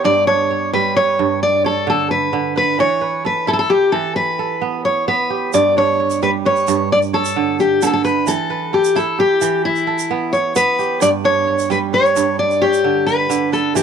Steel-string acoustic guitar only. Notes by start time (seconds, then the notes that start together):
0.05 D5
0.27 C#5
0.73 B4
0.96 C#5
1.43 D5
1.66 A4
1.90 A4
2.11 B4
2.57 B4
2.80 C#5
3.26 B4
3.48 A4
3.53 A4
3.59 A4
3.70 G4
3.92 A4
4.16 B4
4.85 C#5
5.08 B4
5.54 D5
5.78 C#5
6.23 B4
6.46 C#5
6.92 D5
7.14 A4
7.60 G4
7.83 A4
7.93 A4
8.05 B4
8.28 A4
8.74 G4
8.96 A4
9.20 G4
9.65 E4
10.33 C#5
10.56 B4
11.02 D5
11.25 C#5
11.71 B4
11.94 C#5
12.39 D5
12.62 G4
13.07 B4
13.53 A4
13.76 G4